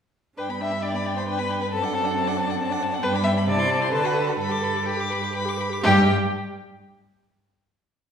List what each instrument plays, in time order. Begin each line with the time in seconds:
0.37 cello G2, viola D4, violin B4 G5
0.49 viola B3, violin B5
0.61 viola D4, violin E5 G5
0.72 viola B3, violin B5
0.82 viola D4, violin D5 G5
0.94 viola B3, violin B5
1.04 viola D4, violin G5
1.16 viola B3, violin C5 B5
1.27 viola D4, violin B4 G5
1.38 viola B3, violin B5
1.49 viola D4, violin G5
1.60 viola B3, violin B4 B5
1.71 cello F#2, viola C4, violin A4 A5
1.82 viola D4, violin F#5
1.93 viola C4, violin A5
2.04 viola D4, violin F#5
2.15 viola C4, violin A5
2.27 viola D4, violin F#5
2.37 viola C4, violin A5
2.47 viola D4, violin F#5
2.59 viola C4, violin A5
2.69 viola D4, violin F#5
2.80 viola C4, violin A5
2.91 viola D4, violin F#5
3.01 cello G2, viola B3, violin B4 G5
3.13 viola D4, violin B5
3.23 viola B3, violin E5 G5
3.34 viola D4
3.38 violin B5
3.45 cello C3, viola C4, violin D5 A5
3.57 viola E4, violin C6
3.68 viola C4, violin A5
3.80 viola E4, violin C5 C6
3.91 cello D3, viola A4, violin B4 A5
4.02 viola F#4, violin F#5
4.14 viola A4, violin A5
4.25 viola F#4, violin A4 F#5
4.38 cello G2, violin A4 B5, viola B4
4.49 viola G4, violin D6
4.62 viola B4, violin B5
4.74 viola G4, violin D6
4.85 violin G4 B5, viola B4
4.97 viola G4, violin D6
5.10 viola B4, violin B5
5.22 viola G4, violin D6
5.33 viola B4, violin B5
5.45 viola G4, violin D6
5.57 viola B4, violin B5
5.70 viola G4, violin D6
5.81 cello G2, viola G4, violin G4 G5